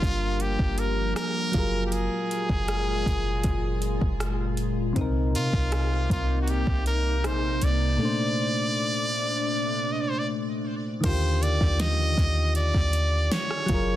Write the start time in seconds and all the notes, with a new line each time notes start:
Already playing: F3 G3 A#3 D4 F4 G4 A#4
0.02 G1, kick, closed hi-hat
0.40 G4, closed hi-hat
0.59 G1, kick
0.78 A#4, closed hi-hat
1.16 A#4, cross-stick, closed hi-hat
1.52 F#1 A#2 F#3 G#3 F4, kick, closed hi-hat
1.57 G#4 A#4
1.86 G4
1.92 G#4, closed hi-hat
2.31 closed hi-hat
2.49 F#1, kick
2.68 cross-stick, closed hi-hat
3.06 F#1, kick, closed hi-hat
3.44 F#1, kick, closed hi-hat
3.82 closed hi-hat
4.01 F#1, kick
4.20 cross-stick, closed hi-hat
4.57 closed hi-hat
4.93 C2 C3 A#3 C4 D#4, kick, closed hi-hat
4.98 D#4 A#4
5.35 C3 F4, closed hi-hat
5.53 C2, kick
5.72 cross-stick, closed hi-hat
6.10 C2 F4, kick, closed hi-hat
6.42 F#4
6.48 G4, closed hi-hat
6.67 C2, kick
6.86 A#4, closed hi-hat
7.24 A#1 C5, cross-stick, closed hi-hat
7.62 C2 D5, closed hi-hat
7.97 A#2 A3 D4
8.02 D4 C5
9.92 D#5
10.01 D5
10.10 C5
10.19 D5
11.01 D#2 D3 D#3 A#4, kick, closed hi-hat, crash
11.05 F4 G4 C5
11.43 D5, closed hi-hat
11.61 D#2, kick
11.80 D#5, snare, closed hi-hat
12.18 D#2, kick, closed hi-hat
12.55 D5, closed hi-hat
12.74 D#2, kick
12.93 closed hi-hat
13.32 C#5, snare, closed hi-hat
13.51 cross-stick
13.66 F#1 F#3 F4, kick, closed hi-hat
13.72 G#4 A#4